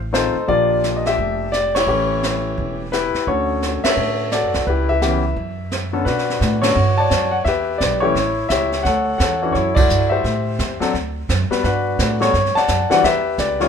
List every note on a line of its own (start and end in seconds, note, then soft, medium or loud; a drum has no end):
0.00 0.32 A1 medium
0.13 0.33 D#3 medium
0.13 0.33 A3 medium
0.13 0.33 C4 soft
0.13 0.47 D#4 medium
0.13 0.33 F4 medium
0.13 0.47 A4 medium
0.13 0.49 C5 medium
0.13 snare medium
0.13 hi-hat pedal medium
0.35 muted upright bass stroke soft
0.48 1.15 A#1 medium
0.48 1.45 F3 medium
0.48 1.45 A#3 medium
0.48 1.45 D4 medium
0.48 1.15 F4 medium
0.48 1.07 G4 medium
0.48 0.81 D5 loud
0.48 brush sweep soft
0.48 kick soft
0.84 snare medium
0.84 hi-hat pedal soft
0.96 1.05 D#5 medium
1.05 1.73 G4 medium
1.05 1.55 E5 loud
1.05 snare soft
1.18 1.84 F1 medium
1.18 brush sweep soft
1.18 kick soft
1.52 1.75 D5 medium
1.52 snare medium
1.52 hi-hat pedal medium
1.75 2.76 E4 medium
1.75 1.87 G4 medium
1.75 2.75 C#5 medium
1.75 snare medium
1.75 ride medium
1.87 2.53 A1 medium
1.87 2.84 E3 medium
1.87 2.85 A3 medium
1.87 2.85 C#4 medium
1.87 2.85 G4 medium
1.87 brush sweep soft
2.23 snare medium
2.23 hi-hat pedal soft
2.58 3.10 E1 medium
2.58 brush sweep soft
2.58 kick soft
2.92 3.26 E4 medium
2.92 3.25 G4 medium
2.92 3.28 B4 medium
2.92 snare medium
2.92 hi-hat pedal soft
3.14 muted upright bass stroke soft
3.14 snare soft
3.27 3.80 D2 medium
3.27 4.24 D3 medium
3.27 4.24 A3 soft
3.27 4.25 C#4 soft
3.27 4.25 F#4 medium
3.27 3.85 A4 medium
3.27 3.80 C#5 medium
3.27 brush sweep soft
3.27 kick soft
3.62 snare medium
3.62 hi-hat pedal soft
3.84 4.32 A4 medium
3.84 4.51 C#5 medium
3.84 4.33 E5 loud
3.84 muted upright bass stroke soft
3.84 snare medium
3.84 ride medium
3.97 4.40 A2 medium
3.97 brush sweep soft
4.32 4.65 F#4 medium
4.32 4.65 A4 medium
4.32 4.64 D5 medium
4.32 snare medium
4.32 hi-hat pedal medium
4.43 4.54 F#2 medium
4.54 4.65 C2 medium
4.54 snare soft
4.67 5.33 C#2 medium
4.67 5.33 E4 medium
4.67 4.89 G4 medium
4.67 4.87 B4 medium
4.67 brush sweep soft
4.67 kick soft
4.89 5.01 G4 medium
4.89 5.34 B4 medium
4.89 5.89 E5 loud
5.02 5.21 E3 medium
5.02 5.21 B3 medium
5.02 5.21 C#4 medium
5.02 5.21 G4 medium
5.02 snare medium
5.02 hi-hat pedal medium
5.37 6.03 F#2 medium
5.37 brush sweep soft
5.37 kick soft
5.71 snare medium
5.71 hi-hat pedal soft
5.93 6.05 D3 medium
5.93 6.05 B3 medium
5.93 6.05 C#4 medium
5.93 6.05 A4 medium
6.05 6.40 B2 medium
6.05 6.72 D4 medium
6.05 6.63 F#4 medium
6.05 6.58 B4 medium
6.05 brush sweep soft
6.05 kick soft
6.05 snare soft
6.18 snare soft
6.30 snare soft
6.41 6.75 A2 medium
6.41 kick soft
6.41 snare medium
6.41 hi-hat pedal medium
6.62 6.74 D3 medium
6.62 6.74 B3 medium
6.62 6.74 C#4 medium
6.62 7.29 F#4 medium
6.62 6.74 A4 medium
6.62 6.98 C#5 medium
6.62 snare medium
6.62 ride medium
6.76 7.09 G2 medium
6.76 brush sweep soft
6.98 7.43 C#5 medium
6.98 7.43 D5 medium
6.98 7.33 A5 loud
7.11 7.44 F#2 medium
7.11 kick soft
7.11 snare medium
7.11 hi-hat pedal medium
7.31 7.36 F#5 medium
7.45 7.79 E2 medium
7.45 8.01 G4 medium
7.45 8.12 B4 medium
7.45 7.77 E5 loud
7.45 brush sweep soft
7.45 kick soft
7.45 snare soft
7.78 8.14 B1 medium
7.78 8.02 D5 medium
7.78 kick soft
7.78 snare medium
7.78 hi-hat pedal medium
8.00 8.14 E3 medium
8.00 8.14 A3 medium
8.00 8.14 C#4 medium
8.00 8.69 E4 medium
8.00 8.14 G4 medium
8.00 8.45 C#5 medium
8.15 8.49 A1 medium
8.15 brush sweep soft
8.15 kick soft
8.15 snare soft
8.49 8.84 C#2 medium
8.49 8.83 G4 medium
8.49 8.83 C#5 medium
8.49 8.82 E5 loud
8.49 kick soft
8.49 snare medium
8.49 hi-hat pedal medium
8.72 snare soft
8.83 9.18 D2 medium
8.83 9.20 A4 medium
8.83 9.20 C#5 medium
8.83 9.17 F#5 medium
8.83 brush sweep soft
8.83 kick soft
8.83 snare soft
9.18 9.53 E2 medium
9.18 9.76 A4 medium
9.18 9.51 C#5 medium
9.18 9.55 F#5 medium
9.18 kick soft
9.18 snare medium
9.18 hi-hat pedal medium
9.42 9.53 E3 medium
9.42 9.54 C#4 medium
9.42 9.54 D4 medium
9.42 9.54 F#4 medium
9.52 9.88 F#2 medium
9.52 10.21 E4 medium
9.52 9.76 F#4 medium
9.52 9.74 C#5 medium
9.52 brush sweep soft
9.52 kick soft
9.52 snare soft
9.75 10.22 F#4 medium
9.75 10.21 A4 medium
9.75 10.11 D5 loud
9.75 kick medium
9.75 crash medium
9.89 10.23 G2 medium
9.89 hi-hat pedal medium
10.09 10.77 G4 medium
10.09 10.77 C5 medium
10.09 10.76 E5 medium
10.24 10.58 A2 medium
10.24 brush sweep soft
10.24 kick soft
10.24 snare soft
10.59 10.79 E2 medium
10.59 kick soft
10.59 snare medium
10.59 hi-hat pedal soft
10.80 10.92 F#3 medium
10.80 10.92 C4 medium
10.80 10.93 D4 medium
10.80 10.93 A4 medium
10.80 muted upright bass stroke soft
10.80 snare medium
10.94 11.28 D2 medium
10.94 brush sweep soft
10.94 kick soft
10.94 snare soft
11.29 11.49 F#2 medium
11.29 kick soft
11.29 snare medium
11.29 hi-hat pedal medium
11.50 11.62 G3 medium
11.50 11.62 B3 medium
11.50 11.62 F#4 medium
11.50 11.62 B4 medium
11.50 muted upright bass stroke soft
11.50 snare soft
11.64 11.98 G2 medium
11.64 12.30 D4 medium
11.64 12.19 F#4 medium
11.64 12.17 B4 medium
11.64 brush sweep soft
11.64 kick soft
11.64 snare soft
11.99 12.33 A2 loud
11.99 kick soft
11.99 snare medium
11.99 hi-hat pedal medium
12.20 12.32 G3 medium
12.20 12.32 B3 medium
12.20 12.32 F#4 medium
12.20 12.32 A4 medium
12.20 12.57 C#5 loud
12.20 snare soft
12.34 12.54 G2 medium
12.34 brush sweep soft
12.34 kick soft
12.34 snare soft
12.45 snare soft
12.55 13.01 D5 medium
12.55 12.89 F#5 medium
12.55 12.91 A5 loud
12.55 muted upright bass stroke soft
12.55 snare soft
12.68 12.89 F#2 medium
12.68 kick soft
12.68 snare medium
12.68 hi-hat pedal medium
12.90 13.02 E3 medium
12.90 13.02 G3 medium
12.90 13.02 D4 medium
12.90 13.02 F#4 medium
12.90 13.03 F#5 loud
12.90 muted upright bass stroke soft
12.90 snare soft
13.04 13.37 E2 medium
13.04 13.61 G4 medium
13.04 13.68 B4 medium
13.04 13.36 E5 loud
13.04 brush sweep soft
13.04 kick soft
13.04 snare soft
13.38 13.68 C#2 medium
13.38 13.61 D5 medium
13.38 kick soft
13.38 snare medium
13.38 hi-hat pedal medium
13.60 13.68 D#3 medium
13.60 13.68 G3 medium
13.60 13.68 C#4 medium
13.60 13.68 F4 medium
13.60 13.68 G4 medium
13.60 13.68 C#5 medium
13.60 snare soft